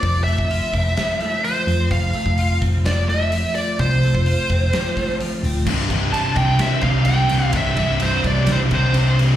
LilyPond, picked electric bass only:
\new Staff \with { instrumentName = "Picked electric bass" } { \clef bass \time 4/4 \key c \major \tempo 4 = 128 f,,8. f,,8 r16 f,,8 r4. f,8 | f,,8 r16 f,,8. f,,2 r8 | c,8. f,,8 r16 f,,8 r4. d,,8 | c,,8 c,,8 r8 c,8 r8 c,4 c,8 |
c,,8 c,,4 c,8 c,8 c,4. | }